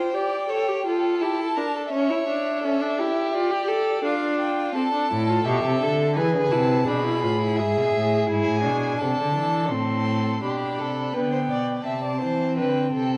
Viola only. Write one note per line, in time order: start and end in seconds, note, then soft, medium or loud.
0.00 0.13 F4 medium
0.14 0.48 G4 medium
0.49 0.70 A4 medium
0.68 0.85 G4 medium
0.86 1.23 F4 medium
1.21 1.59 E4 medium
1.57 1.92 D4 medium
1.92 2.11 C#4 medium
2.10 2.28 E4 medium
2.28 2.65 D4 medium
2.64 2.83 C#4 medium
2.81 3.01 D4 medium
2.99 3.34 E4 medium
3.35 3.52 F4 medium
3.51 3.70 G4 medium
3.68 4.04 A4 medium
4.04 4.74 D4 medium
4.75 4.92 C4 medium
4.94 5.11 D4 medium
5.12 5.31 E4 medium
5.29 5.46 F4 medium
5.47 5.85 G4 medium
5.83 6.17 A4 medium
6.18 6.53 G#4 medium
6.52 6.87 E4 medium
6.88 7.05 D4 medium
7.06 7.23 E4 medium
7.23 7.40 F4 medium
7.41 7.61 E4 medium
7.59 8.29 G#4 medium
8.29 8.63 E4 medium
8.64 9.73 D4 medium
9.71 10.42 C4 medium
10.42 11.11 D4 medium
11.15 11.86 B3 medium
11.86 13.17 C4 medium